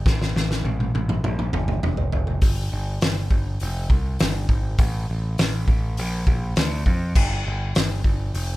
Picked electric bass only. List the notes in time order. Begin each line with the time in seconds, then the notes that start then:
0.06 A1
0.35 A1
0.63 A1
0.94 A1
1.24 A#1
1.54 G1
1.83 F1
2.13 F1
2.42 G1
2.72 G1
3.02 G1
3.31 G1
3.62 F1
3.90 C2
4.21 G1
4.49 G#1
4.79 A1
5.10 A1
5.40 A1
5.68 A1
5.99 A#1
6.27 A#1
6.57 D2
6.86 F2
7.16 G1
7.47 G1
7.76 G1
8.04 G1
8.34 F1